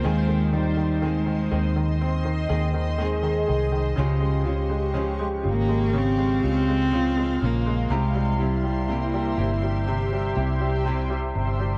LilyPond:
<<
  \new Staff \with { instrumentName = "Ambient pad" } { \time 4/4 \key des \lydian \tempo 4 = 61 << { c'''1 | des'''2 c'''2~ | c'''1 | } \\ { <c'' ees''>1 | f''1 | <g' c'' e''>1 | } >> }
  \new Staff \with { instrumentName = "French horn section" } { \time 4/4 \key des \lydian ees'2~ ees'8 r8 aes'4 | g'2. f'8 r8 | e'2 g'4. r8 | }
  \new Staff \with { instrumentName = "Nylon-string guitar" } { \time 4/4 \key des \lydian <ees aes c' aes'>8 c'8 <ees aes c' aes'>8 <aes c' aes'>4 <aes c' aes'>8 <ees aes c' aes'>4 | <des f aes des' f'>8 <aes des' f'>8 <f aes des' f'>8 <aes f'>4 <aes f'>8 <f aes f'>4 | <c c' e' g'>8 <c' e' g'>8 <g c' e' g'>8 <c' e' g'>4 <c' e' g'>8 <g c' e' g'>4 | }
  \new Staff \with { instrumentName = "Cello" } { \time 4/4 \key des \lydian aes8 g8 aes4 r2 | r4. bes8 c'8 c'4 bes8 | aes8 g8 bes4 r2 | }
  \new Staff \with { instrumentName = "Upright piano" } { \clef bass \time 4/4 \key des \lydian ees16 ees16 ees16 ees16 ees16 ees16 ees16 ees16 c'16 ees16 ees16 ees16 ees16 ees16 ees16 ees16 | des16 aes16 des16 aes16 des16 aes16 des16 aes16 des16 aes16 des16 aes16 des16 aes16 des16 aes16 | c16 g16 c16 g16 c16 g16 c16 g16 c16 g16 c16 g16 c16 g16 c16 g16 | }
  \new Staff \with { instrumentName = "Fingered electric bass" } { \clef bass \time 4/4 \key des \lydian ees,4. ees,4 ees,4 c,8 | des,4. aes,,4 des,4 bes,,8 | c,4. g,,4 c,4 g,,8 | }
>>